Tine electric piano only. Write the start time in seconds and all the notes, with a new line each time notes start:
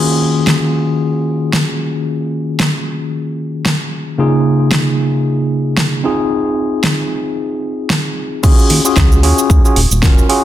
Already playing: D#3 A#3 C#4 F4 F#4 G#4
4.18 C#3 A#3 D#4 F4 G#4
6.03 C4 D#4 F4 G#4
8.43 C#4 F4 F#4 G#4
8.85 C#4 F4 F#4 G#4
9.23 C#4 F4 F#4 G#4
9.64 C#4 F4 F#4 G#4
10.02 C#4 F4 F#4 A#4
10.29 C#4 F4 F#4 G#4